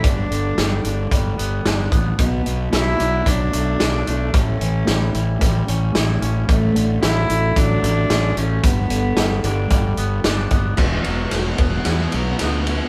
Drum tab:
CC |--------|--------|--------|--------|
RD |--------|--------|--------|--------|
HH |xxxxxxxx|xxxxxxxx|xxxxxxxx|xxxxxxxx|
SD |--o---o-|--o---o-|--o---o-|--o---o-|
BD |o---o--o|o---o---|o---o---|o---o---|

CC |--------|x-------|
RD |--------|-xxxxxxx|
HH |xxxxxxxx|--------|
SD |--o---o-|o-o-o-o-|
BD |o---o--o|o--o----|